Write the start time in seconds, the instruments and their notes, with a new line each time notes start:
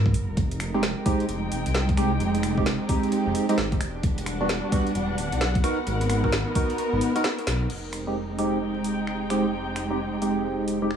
Already playing: detuned saw bass G#2, string section B3 A#4 F#5
0.06 kick
0.14 detuned saw bass F#1, open hi-hat
0.29 detuned saw bass D#1
0.37 detuned saw bass F1, string machine G#3 C4 D#4 G4, string section D#4, kick, closed hi-hat
0.51 closed hi-hat
0.58 string section G#3, finger snap, open hi-hat
0.74 synth stab G#3 C4 D#4 G4
0.82 string section G5, snare, closed hi-hat
1.06 synth stab G#3 C4 D#4 G4, kick, open hi-hat
1.20 closed hi-hat
1.29 detuned saw bass F1, closed hi-hat
1.52 detuned saw bass D#1, open hi-hat
1.66 detuned saw bass C2, closed hi-hat
1.74 finger snap, snare, closed hi-hat
1.89 kick, closed hi-hat
1.97 synth stab G#3 C4 D#4 G4, finger snap, open hi-hat
2.20 detuned saw bass F1, closed hi-hat
2.35 closed hi-hat
2.43 finger snap, open hi-hat
2.58 synth stab G#3 C4 D#4 G4, kick
2.66 snare, closed hi-hat
2.89 synth stab G#3 C4 D#4 G4, kick, open hi-hat
3.03 closed hi-hat
3.12 closed hi-hat
3.26 detuned saw bass F1
3.35 open hi-hat
3.49 synth stab G#3 C4 D#4 G4, closed hi-hat
3.58 detuned saw bass G#1, finger snap, snare, closed hi-hat
3.72 kick, closed hi-hat
3.80 detuned saw bass E1, string machine B3 D4 F#4, string section D4, finger snap, open hi-hat
4.03 detuned saw bass E1, kick, closed hi-hat
4.09 string section G3 F#5
4.18 closed hi-hat
4.26 finger snap, open hi-hat
4.41 synth stab G3 B3 D4 F#4
4.49 snare, closed hi-hat
4.72 synth stab G3 B3 D4 F#4, kick, open hi-hat
4.87 closed hi-hat
4.95 detuned saw bass E1, closed hi-hat
5.18 detuned saw bass D1, open hi-hat
5.32 detuned saw bass B1, closed hi-hat
5.41 finger snap, snare, closed hi-hat
5.55 kick, closed hi-hat
5.64 string section B3, synth stab B3 D#4 F#4 A#4, string machine D#4 A#4, finger snap, open hi-hat
5.69 string section A#4
5.87 detuned saw bass G#1, closed hi-hat
6.01 closed hi-hat
6.10 finger snap, open hi-hat
6.24 synth stab B3 D#4 F#4 A#4, kick
6.32 snare, closed hi-hat
6.55 synth stab B3 D#4 F#4 A#4, kick, open hi-hat
6.70 closed hi-hat
6.78 closed hi-hat
6.93 detuned saw bass G#1
7.01 open hi-hat
7.16 synth stab B3 D#4 F#4 A#4, closed hi-hat
7.24 finger snap, snare, closed hi-hat
7.38 closed hi-hat
7.47 detuned saw bass B1, snare, open hi-hat
7.70 detuned saw bass F1, string machine G#3 C4 D#4 G4, string section D#4, crash
7.93 finger snap, open hi-hat
7.98 string section G#3
8.07 synth stab G#3 C4 D#4 G4
8.31 string section G5
8.39 synth stab G#3 C4 D#4 G4, open hi-hat
8.84 open hi-hat
9.07 finger snap
9.30 synth stab G#3 C4 D#4 G4, finger snap, open hi-hat
9.76 finger snap, open hi-hat
9.90 synth stab G#3 C4 D#4 G4
10.22 synth stab G#3 C4 D#4 G4, open hi-hat
10.68 open hi-hat
10.82 synth stab G#3 C4 D#4 G4
10.91 finger snap